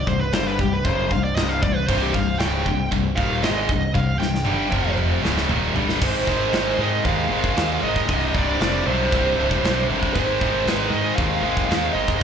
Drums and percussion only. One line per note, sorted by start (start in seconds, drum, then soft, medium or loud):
0.07 kick loud
0.33 snare loud
0.33 china medium
0.59 kick medium
0.85 kick loud
0.85 china medium
1.11 kick medium
1.36 snare loud
1.36 china medium
1.63 kick loud
1.89 kick loud
1.89 china medium
1.89 crash loud
2.14 kick loud
2.39 snare loud
2.39 china medium
2.66 kick medium
2.92 kick medium
2.92 china medium
3.18 kick loud
3.43 snare loud
3.43 china medium
3.69 kick medium
3.95 kick medium
4.22 snare medium
4.35 snare medium
4.46 mid tom medium
4.72 kick medium
4.84 mid tom medium
4.98 mid tom medium
5.25 snare medium
5.38 snare medium
5.49 floor tom loud
5.76 floor tom loud
5.89 snare medium
6.02 kick loud
6.02 crash loud
6.02 crash medium
6.27 kick medium
6.53 snare loud
6.53 crash medium
7.05 kick loud
7.05 crash medium
7.44 kick medium
7.57 snare loud
7.57 crash medium
7.96 kick medium
8.09 kick loud
8.09 crash medium
8.35 kick medium
8.61 snare loud
8.61 crash medium
9.12 kick loud
9.12 crash medium
9.51 kick medium
9.64 snare loud
9.64 crash medium
10.03 kick medium
10.16 kick loud
10.16 crash medium
10.41 kick loud
10.67 snare loud
10.67 crash medium
11.18 kick loud
11.18 crash medium
11.57 kick medium
11.71 snare loud
11.71 crash medium
12.08 kick medium